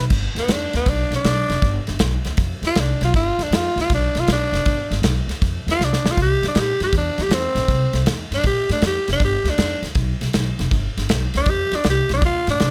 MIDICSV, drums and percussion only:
0, 0, Header, 1, 2, 480
1, 0, Start_track
1, 0, Tempo, 378549
1, 134, Time_signature, 4, 2, 24, 8
1, 16111, End_track
2, 0, Start_track
2, 0, Title_t, "Drums"
2, 128, Note_on_c, 9, 49, 92
2, 134, Note_on_c, 9, 36, 97
2, 139, Note_on_c, 9, 38, 29
2, 255, Note_off_c, 9, 49, 0
2, 260, Note_off_c, 9, 36, 0
2, 266, Note_off_c, 9, 38, 0
2, 459, Note_on_c, 9, 51, 61
2, 470, Note_on_c, 9, 38, 34
2, 586, Note_off_c, 9, 51, 0
2, 597, Note_off_c, 9, 38, 0
2, 613, Note_on_c, 9, 51, 87
2, 624, Note_on_c, 9, 38, 108
2, 739, Note_off_c, 9, 51, 0
2, 751, Note_off_c, 9, 38, 0
2, 929, Note_on_c, 9, 51, 61
2, 941, Note_on_c, 9, 38, 33
2, 1056, Note_off_c, 9, 51, 0
2, 1067, Note_off_c, 9, 38, 0
2, 1091, Note_on_c, 9, 51, 82
2, 1095, Note_on_c, 9, 36, 102
2, 1102, Note_on_c, 9, 38, 34
2, 1217, Note_off_c, 9, 51, 0
2, 1222, Note_off_c, 9, 36, 0
2, 1229, Note_off_c, 9, 38, 0
2, 1415, Note_on_c, 9, 51, 54
2, 1426, Note_on_c, 9, 38, 29
2, 1542, Note_off_c, 9, 51, 0
2, 1553, Note_off_c, 9, 38, 0
2, 1578, Note_on_c, 9, 51, 81
2, 1589, Note_on_c, 9, 38, 97
2, 1704, Note_off_c, 9, 51, 0
2, 1716, Note_off_c, 9, 38, 0
2, 1897, Note_on_c, 9, 51, 61
2, 1908, Note_on_c, 9, 38, 32
2, 2023, Note_off_c, 9, 51, 0
2, 2035, Note_off_c, 9, 38, 0
2, 2055, Note_on_c, 9, 51, 71
2, 2058, Note_on_c, 9, 36, 100
2, 2066, Note_on_c, 9, 38, 30
2, 2182, Note_off_c, 9, 51, 0
2, 2185, Note_off_c, 9, 36, 0
2, 2193, Note_off_c, 9, 38, 0
2, 2370, Note_on_c, 9, 51, 57
2, 2381, Note_on_c, 9, 38, 33
2, 2497, Note_off_c, 9, 51, 0
2, 2508, Note_off_c, 9, 38, 0
2, 2524, Note_on_c, 9, 51, 80
2, 2536, Note_on_c, 9, 38, 110
2, 2651, Note_off_c, 9, 51, 0
2, 2662, Note_off_c, 9, 38, 0
2, 2847, Note_on_c, 9, 51, 50
2, 2858, Note_on_c, 9, 38, 31
2, 2974, Note_off_c, 9, 51, 0
2, 2985, Note_off_c, 9, 38, 0
2, 3005, Note_on_c, 9, 51, 76
2, 3016, Note_on_c, 9, 36, 102
2, 3016, Note_on_c, 9, 38, 32
2, 3132, Note_off_c, 9, 51, 0
2, 3143, Note_off_c, 9, 36, 0
2, 3143, Note_off_c, 9, 38, 0
2, 3331, Note_on_c, 9, 51, 52
2, 3342, Note_on_c, 9, 38, 33
2, 3458, Note_off_c, 9, 51, 0
2, 3469, Note_off_c, 9, 38, 0
2, 3492, Note_on_c, 9, 51, 78
2, 3503, Note_on_c, 9, 38, 106
2, 3618, Note_off_c, 9, 51, 0
2, 3630, Note_off_c, 9, 38, 0
2, 3815, Note_on_c, 9, 51, 58
2, 3827, Note_on_c, 9, 38, 33
2, 3942, Note_off_c, 9, 51, 0
2, 3954, Note_off_c, 9, 38, 0
2, 3979, Note_on_c, 9, 51, 74
2, 3982, Note_on_c, 9, 36, 96
2, 3991, Note_on_c, 9, 38, 30
2, 4106, Note_off_c, 9, 51, 0
2, 4109, Note_off_c, 9, 36, 0
2, 4118, Note_off_c, 9, 38, 0
2, 4299, Note_on_c, 9, 51, 60
2, 4310, Note_on_c, 9, 38, 33
2, 4425, Note_off_c, 9, 51, 0
2, 4437, Note_off_c, 9, 38, 0
2, 4468, Note_on_c, 9, 51, 83
2, 4479, Note_on_c, 9, 38, 110
2, 4594, Note_off_c, 9, 51, 0
2, 4606, Note_off_c, 9, 38, 0
2, 4788, Note_on_c, 9, 51, 59
2, 4799, Note_on_c, 9, 38, 32
2, 4915, Note_off_c, 9, 51, 0
2, 4926, Note_off_c, 9, 38, 0
2, 4941, Note_on_c, 9, 51, 82
2, 4945, Note_on_c, 9, 36, 103
2, 4952, Note_on_c, 9, 38, 32
2, 5068, Note_off_c, 9, 51, 0
2, 5072, Note_off_c, 9, 36, 0
2, 5079, Note_off_c, 9, 38, 0
2, 5260, Note_on_c, 9, 51, 57
2, 5271, Note_on_c, 9, 38, 33
2, 5387, Note_off_c, 9, 51, 0
2, 5398, Note_off_c, 9, 38, 0
2, 5421, Note_on_c, 9, 51, 82
2, 5432, Note_on_c, 9, 38, 104
2, 5547, Note_off_c, 9, 51, 0
2, 5559, Note_off_c, 9, 38, 0
2, 5751, Note_on_c, 9, 51, 60
2, 5762, Note_on_c, 9, 38, 31
2, 5877, Note_off_c, 9, 51, 0
2, 5889, Note_off_c, 9, 38, 0
2, 5902, Note_on_c, 9, 51, 79
2, 5910, Note_on_c, 9, 36, 101
2, 5914, Note_on_c, 9, 38, 31
2, 6029, Note_off_c, 9, 51, 0
2, 6037, Note_off_c, 9, 36, 0
2, 6040, Note_off_c, 9, 38, 0
2, 6231, Note_on_c, 9, 51, 59
2, 6243, Note_on_c, 9, 38, 36
2, 6358, Note_off_c, 9, 51, 0
2, 6370, Note_off_c, 9, 38, 0
2, 6380, Note_on_c, 9, 51, 84
2, 6391, Note_on_c, 9, 38, 110
2, 6507, Note_off_c, 9, 51, 0
2, 6518, Note_off_c, 9, 38, 0
2, 6709, Note_on_c, 9, 51, 54
2, 6720, Note_on_c, 9, 38, 29
2, 6836, Note_off_c, 9, 51, 0
2, 6847, Note_off_c, 9, 38, 0
2, 6871, Note_on_c, 9, 36, 103
2, 6875, Note_on_c, 9, 51, 72
2, 6887, Note_on_c, 9, 38, 32
2, 6998, Note_off_c, 9, 36, 0
2, 7002, Note_off_c, 9, 51, 0
2, 7013, Note_off_c, 9, 38, 0
2, 7202, Note_on_c, 9, 51, 56
2, 7214, Note_on_c, 9, 38, 34
2, 7329, Note_off_c, 9, 51, 0
2, 7341, Note_off_c, 9, 38, 0
2, 7365, Note_on_c, 9, 38, 57
2, 7492, Note_off_c, 9, 38, 0
2, 7522, Note_on_c, 9, 38, 61
2, 7649, Note_off_c, 9, 38, 0
2, 7679, Note_on_c, 9, 38, 91
2, 7806, Note_off_c, 9, 38, 0
2, 7830, Note_on_c, 9, 36, 91
2, 7830, Note_on_c, 9, 51, 76
2, 7841, Note_on_c, 9, 38, 30
2, 7957, Note_off_c, 9, 36, 0
2, 7957, Note_off_c, 9, 51, 0
2, 7968, Note_off_c, 9, 38, 0
2, 8155, Note_on_c, 9, 51, 61
2, 8166, Note_on_c, 9, 38, 32
2, 8281, Note_off_c, 9, 51, 0
2, 8293, Note_off_c, 9, 38, 0
2, 8305, Note_on_c, 9, 51, 79
2, 8317, Note_on_c, 9, 38, 110
2, 8432, Note_off_c, 9, 51, 0
2, 8443, Note_off_c, 9, 38, 0
2, 8624, Note_on_c, 9, 51, 56
2, 8636, Note_on_c, 9, 38, 31
2, 8751, Note_off_c, 9, 51, 0
2, 8763, Note_off_c, 9, 38, 0
2, 8782, Note_on_c, 9, 51, 80
2, 8784, Note_on_c, 9, 36, 101
2, 8794, Note_on_c, 9, 38, 32
2, 8909, Note_off_c, 9, 51, 0
2, 8910, Note_off_c, 9, 36, 0
2, 8921, Note_off_c, 9, 38, 0
2, 9103, Note_on_c, 9, 51, 57
2, 9114, Note_on_c, 9, 38, 31
2, 9229, Note_off_c, 9, 51, 0
2, 9241, Note_off_c, 9, 38, 0
2, 9264, Note_on_c, 9, 51, 80
2, 9275, Note_on_c, 9, 38, 110
2, 9390, Note_off_c, 9, 51, 0
2, 9402, Note_off_c, 9, 38, 0
2, 9581, Note_on_c, 9, 51, 60
2, 9592, Note_on_c, 9, 38, 33
2, 9708, Note_off_c, 9, 51, 0
2, 9719, Note_off_c, 9, 38, 0
2, 9741, Note_on_c, 9, 51, 80
2, 9744, Note_on_c, 9, 36, 96
2, 9753, Note_on_c, 9, 38, 31
2, 9868, Note_off_c, 9, 51, 0
2, 9871, Note_off_c, 9, 36, 0
2, 9879, Note_off_c, 9, 38, 0
2, 10057, Note_on_c, 9, 51, 63
2, 10069, Note_on_c, 9, 38, 35
2, 10184, Note_off_c, 9, 51, 0
2, 10196, Note_off_c, 9, 38, 0
2, 10221, Note_on_c, 9, 51, 92
2, 10233, Note_on_c, 9, 38, 110
2, 10348, Note_off_c, 9, 51, 0
2, 10359, Note_off_c, 9, 38, 0
2, 10547, Note_on_c, 9, 51, 60
2, 10559, Note_on_c, 9, 38, 33
2, 10674, Note_off_c, 9, 51, 0
2, 10685, Note_off_c, 9, 38, 0
2, 10695, Note_on_c, 9, 51, 80
2, 10705, Note_on_c, 9, 36, 103
2, 10706, Note_on_c, 9, 38, 34
2, 10822, Note_off_c, 9, 51, 0
2, 10831, Note_off_c, 9, 36, 0
2, 10833, Note_off_c, 9, 38, 0
2, 11023, Note_on_c, 9, 51, 58
2, 11035, Note_on_c, 9, 38, 33
2, 11150, Note_off_c, 9, 51, 0
2, 11162, Note_off_c, 9, 38, 0
2, 11179, Note_on_c, 9, 51, 79
2, 11190, Note_on_c, 9, 38, 99
2, 11306, Note_off_c, 9, 51, 0
2, 11317, Note_off_c, 9, 38, 0
2, 11510, Note_on_c, 9, 51, 60
2, 11521, Note_on_c, 9, 38, 31
2, 11636, Note_off_c, 9, 51, 0
2, 11648, Note_off_c, 9, 38, 0
2, 11663, Note_on_c, 9, 51, 73
2, 11667, Note_on_c, 9, 36, 102
2, 11675, Note_on_c, 9, 38, 29
2, 11790, Note_off_c, 9, 51, 0
2, 11793, Note_off_c, 9, 36, 0
2, 11801, Note_off_c, 9, 38, 0
2, 11987, Note_on_c, 9, 51, 58
2, 11999, Note_on_c, 9, 38, 34
2, 12114, Note_off_c, 9, 51, 0
2, 12125, Note_off_c, 9, 38, 0
2, 12146, Note_on_c, 9, 51, 82
2, 12157, Note_on_c, 9, 38, 115
2, 12272, Note_off_c, 9, 51, 0
2, 12284, Note_off_c, 9, 38, 0
2, 12459, Note_on_c, 9, 51, 52
2, 12471, Note_on_c, 9, 38, 31
2, 12586, Note_off_c, 9, 51, 0
2, 12597, Note_off_c, 9, 38, 0
2, 12613, Note_on_c, 9, 51, 80
2, 12622, Note_on_c, 9, 36, 103
2, 12624, Note_on_c, 9, 38, 32
2, 12740, Note_off_c, 9, 51, 0
2, 12749, Note_off_c, 9, 36, 0
2, 12751, Note_off_c, 9, 38, 0
2, 12947, Note_on_c, 9, 51, 60
2, 12958, Note_on_c, 9, 38, 31
2, 13073, Note_off_c, 9, 51, 0
2, 13085, Note_off_c, 9, 38, 0
2, 13102, Note_on_c, 9, 51, 78
2, 13113, Note_on_c, 9, 38, 110
2, 13229, Note_off_c, 9, 51, 0
2, 13240, Note_off_c, 9, 38, 0
2, 13427, Note_on_c, 9, 51, 58
2, 13438, Note_on_c, 9, 38, 35
2, 13554, Note_off_c, 9, 51, 0
2, 13565, Note_off_c, 9, 38, 0
2, 13585, Note_on_c, 9, 36, 104
2, 13587, Note_on_c, 9, 51, 77
2, 13598, Note_on_c, 9, 38, 30
2, 13712, Note_off_c, 9, 36, 0
2, 13714, Note_off_c, 9, 51, 0
2, 13725, Note_off_c, 9, 38, 0
2, 13916, Note_on_c, 9, 51, 67
2, 13928, Note_on_c, 9, 38, 35
2, 14043, Note_off_c, 9, 51, 0
2, 14054, Note_off_c, 9, 38, 0
2, 14062, Note_on_c, 9, 51, 87
2, 14074, Note_on_c, 9, 38, 116
2, 14189, Note_off_c, 9, 51, 0
2, 14201, Note_off_c, 9, 38, 0
2, 14375, Note_on_c, 9, 51, 56
2, 14387, Note_on_c, 9, 38, 33
2, 14502, Note_off_c, 9, 51, 0
2, 14513, Note_off_c, 9, 38, 0
2, 14527, Note_on_c, 9, 51, 75
2, 14536, Note_on_c, 9, 36, 102
2, 14539, Note_on_c, 9, 38, 33
2, 14654, Note_off_c, 9, 51, 0
2, 14663, Note_off_c, 9, 36, 0
2, 14665, Note_off_c, 9, 38, 0
2, 14855, Note_on_c, 9, 51, 63
2, 14866, Note_on_c, 9, 38, 31
2, 14982, Note_off_c, 9, 51, 0
2, 14993, Note_off_c, 9, 38, 0
2, 15011, Note_on_c, 9, 51, 78
2, 15022, Note_on_c, 9, 38, 106
2, 15137, Note_off_c, 9, 51, 0
2, 15149, Note_off_c, 9, 38, 0
2, 15333, Note_on_c, 9, 51, 59
2, 15344, Note_on_c, 9, 38, 34
2, 15459, Note_off_c, 9, 51, 0
2, 15471, Note_off_c, 9, 38, 0
2, 15493, Note_on_c, 9, 51, 77
2, 15495, Note_on_c, 9, 36, 108
2, 15504, Note_on_c, 9, 38, 32
2, 15619, Note_off_c, 9, 51, 0
2, 15622, Note_off_c, 9, 36, 0
2, 15631, Note_off_c, 9, 38, 0
2, 15813, Note_on_c, 9, 51, 59
2, 15824, Note_on_c, 9, 38, 34
2, 15940, Note_off_c, 9, 51, 0
2, 15951, Note_off_c, 9, 38, 0
2, 15972, Note_on_c, 9, 51, 77
2, 15984, Note_on_c, 9, 38, 115
2, 16099, Note_off_c, 9, 51, 0
2, 16110, Note_off_c, 9, 38, 0
2, 16111, End_track
0, 0, End_of_file